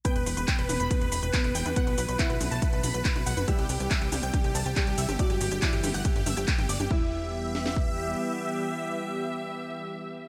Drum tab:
HH |xxoxxxoxxxoxxxox|xxoxxxooxxoxxxox|xxoxxxoxxxoxxxox|xxoxxxooxxoxxxox|
SH |x-xxx-xxx-xxx-xx|x-xxx-xxx-xxx-xx|x-xxx-xxx-xxx-xx|x-xxx-xxx-xxx-xx|
CP |----x-------x---|----x-------x---|----x-------x---|----x-------x---|
SD |----------------|----------------|----------------|----------------|
T2 |------o-o------o|------o---o--o-o|------o-o------o|------o---o--o-o|
BD |o---o---o---o---|o---o---o---o---|o---o---o---o---|o---o---o---o---|

HH |----------------|----------------|
SH |----------------|----------------|
CP |----------------|----------------|
SD |------oo--------|----------------|
T2 |----------------|----------------|
BD |o-------o-------|----------------|